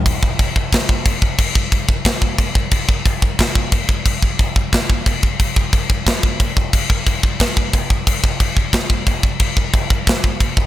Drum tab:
CC |x-x-x-x-x-x-x-x-|x-x-x-x-x-x-x-x-|x-x-x-x-x-x-x-x-|x-x-x-x-x-x-x-x-|
SD |----o-------o---|----o-------o---|----o-------o---|----o-------o---|
BD |oooooooooooooooo|oooooooooooooooo|oooooooooooooooo|oooooooooooooooo|